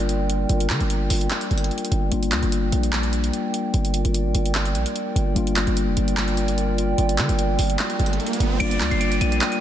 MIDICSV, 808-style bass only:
0, 0, Header, 1, 2, 480
1, 0, Start_track
1, 0, Key_signature, -2, "minor"
1, 0, Tempo, 405405
1, 586, Time_signature, 4, 2, 24, 8
1, 11372, End_track
2, 0, Start_track
2, 0, Title_t, "808-style bass"
2, 0, Program_c, 0, 38
2, 0, Note_on_c, 0, 31, 107
2, 538, Note_off_c, 0, 31, 0
2, 586, Note_on_c, 0, 31, 101
2, 826, Note_on_c, 0, 50, 99
2, 843, Note_off_c, 0, 31, 0
2, 947, Note_off_c, 0, 50, 0
2, 954, Note_on_c, 0, 31, 97
2, 1292, Note_off_c, 0, 31, 0
2, 1307, Note_on_c, 0, 31, 105
2, 1537, Note_off_c, 0, 31, 0
2, 1786, Note_on_c, 0, 31, 105
2, 2016, Note_off_c, 0, 31, 0
2, 2267, Note_on_c, 0, 31, 104
2, 2497, Note_off_c, 0, 31, 0
2, 2506, Note_on_c, 0, 31, 103
2, 2745, Note_on_c, 0, 38, 97
2, 2763, Note_off_c, 0, 31, 0
2, 2866, Note_off_c, 0, 38, 0
2, 2873, Note_on_c, 0, 31, 99
2, 3211, Note_off_c, 0, 31, 0
2, 3226, Note_on_c, 0, 34, 102
2, 3917, Note_off_c, 0, 34, 0
2, 4427, Note_on_c, 0, 31, 111
2, 4779, Note_off_c, 0, 31, 0
2, 4792, Note_on_c, 0, 31, 100
2, 5032, Note_on_c, 0, 32, 98
2, 5050, Note_off_c, 0, 31, 0
2, 5140, Note_off_c, 0, 32, 0
2, 5145, Note_on_c, 0, 31, 107
2, 5625, Note_on_c, 0, 34, 98
2, 5643, Note_off_c, 0, 31, 0
2, 5746, Note_off_c, 0, 34, 0
2, 6106, Note_on_c, 0, 31, 100
2, 6336, Note_off_c, 0, 31, 0
2, 6346, Note_on_c, 0, 31, 111
2, 6698, Note_off_c, 0, 31, 0
2, 6713, Note_on_c, 0, 31, 104
2, 6952, Note_on_c, 0, 29, 97
2, 6970, Note_off_c, 0, 31, 0
2, 7060, Note_off_c, 0, 29, 0
2, 7066, Note_on_c, 0, 31, 103
2, 8219, Note_off_c, 0, 31, 0
2, 8266, Note_on_c, 0, 31, 102
2, 8505, Note_on_c, 0, 50, 93
2, 8523, Note_off_c, 0, 31, 0
2, 8626, Note_off_c, 0, 50, 0
2, 8632, Note_on_c, 0, 31, 103
2, 8971, Note_off_c, 0, 31, 0
2, 8985, Note_on_c, 0, 31, 107
2, 9216, Note_off_c, 0, 31, 0
2, 9466, Note_on_c, 0, 31, 104
2, 9696, Note_off_c, 0, 31, 0
2, 9945, Note_on_c, 0, 31, 101
2, 10176, Note_off_c, 0, 31, 0
2, 10186, Note_on_c, 0, 31, 109
2, 10425, Note_on_c, 0, 38, 97
2, 10443, Note_off_c, 0, 31, 0
2, 10546, Note_off_c, 0, 38, 0
2, 10553, Note_on_c, 0, 31, 101
2, 10892, Note_off_c, 0, 31, 0
2, 10905, Note_on_c, 0, 34, 105
2, 11136, Note_off_c, 0, 34, 0
2, 11372, End_track
0, 0, End_of_file